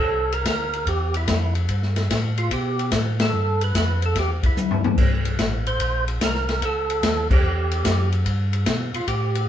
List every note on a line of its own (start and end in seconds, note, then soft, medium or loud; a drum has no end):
0.00 0.44 C2 medium
0.00 0.33 A4 loud
0.33 0.46 A#4 medium
0.33 ride soft
0.45 0.85 D2 medium
0.45 0.89 A#4 loud
0.45 kick soft
0.45 snare medium
0.45 hi-hat pedal soft
0.45 ride medium
0.73 ride soft
0.87 1.26 E2 medium
0.87 1.16 G4 medium
0.87 kick soft
0.87 ride medium
1.14 1.54 E4 medium
1.14 ride medium
1.28 1.68 F2 medium
1.28 kick soft
1.28 snare medium
1.28 hi-hat pedal medium
1.28 ride medium
1.55 ride soft
1.68 2.08 G2 medium
1.68 kick soft
1.68 ride medium
1.83 snare soft
1.96 snare soft
1.96 ride medium
2.10 2.50 A2 medium
2.10 kick soft
2.10 snare medium
2.10 hi-hat pedal soft
2.10 ride medium
2.38 2.52 F4 medium
2.38 ride soft
2.51 2.91 B2 medium
2.51 2.90 G4 medium
2.51 kick soft
2.51 ride medium
2.79 ride soft
2.92 3.32 A2 medium
2.92 kick soft
2.92 snare medium
2.92 hi-hat pedal medium
2.92 ride medium
3.20 3.63 A4 medium
3.20 snare medium
3.20 ride medium
3.32 3.72 G2 medium
3.61 3.75 B4 loud
3.61 ride medium
3.74 4.14 F2 medium
3.74 4.04 B4 loud
3.74 kick soft
3.74 snare medium
3.74 hi-hat pedal medium
3.74 ride medium
4.02 4.17 A4 medium
4.02 ride soft
4.15 4.41 E2 medium
4.15 kick soft
4.15 snare soft
4.15 ride medium
4.19 4.31 G4 medium
4.43 4.50 E2 soft
4.43 4.83 E4 medium
4.43 kick medium
4.43 ride medium
4.55 4.95 D2 medium
4.55 hi-hat pedal medium
4.55 high tom soft
4.71 floor tom medium
4.84 floor tom medium
4.97 5.37 C2 medium
4.97 kick medium
4.97 crash medium
5.25 ride soft
5.39 5.78 A1 medium
5.39 kick soft
5.39 snare medium
5.39 hi-hat pedal medium
5.39 ride medium
5.67 6.05 C5 loud
5.67 ride soft
5.79 6.19 A#1 medium
5.79 kick soft
5.79 ride medium
6.08 ride soft
6.21 6.60 C2 medium
6.21 6.64 A#4 medium
6.21 kick soft
6.21 snare medium
6.21 hi-hat pedal medium
6.21 ride medium
6.35 snare soft
6.49 snare soft
6.49 ride soft
6.61 7.01 C#2 medium
6.61 7.28 A4 loud
6.61 kick soft
6.61 ride medium
6.90 ride medium
7.03 7.42 D#2 medium
7.03 kick soft
7.03 snare medium
7.03 hi-hat pedal soft
7.03 ride medium
7.30 8.09 G4 medium
7.30 kick medium
7.30 crash medium
7.43 7.83 E2 medium
7.71 ride medium
7.84 8.24 F#2 medium
7.84 kick soft
7.84 snare medium
7.84 hi-hat pedal medium
7.84 ride medium
8.12 ride soft
8.25 8.65 G2 medium
8.25 kick soft
8.25 ride medium
8.53 ride soft
8.66 8.92 B2 medium
8.66 kick soft
8.66 snare medium
8.66 hi-hat pedal medium
8.66 ride medium
8.93 9.00 B2 soft
8.93 9.07 F4 medium
8.93 ride soft
9.07 9.47 A2 medium
9.07 9.46 G4 medium
9.07 kick soft
9.07 ride medium
9.35 ride medium